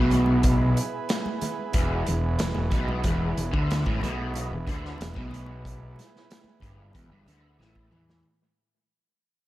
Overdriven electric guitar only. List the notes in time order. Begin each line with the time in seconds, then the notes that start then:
Already playing: B2
1.75 E2
2.09 E2
2.41 E2
2.56 E2
2.73 B2
3.06 E2
3.38 E2
3.52 D3
3.87 A2
4.04 B2
4.53 E2
4.68 D3
5.00 E2
5.16 B2
6.62 G2
6.95 E2
7.12 G2
7.28 D3
7.60 A2
7.92 E3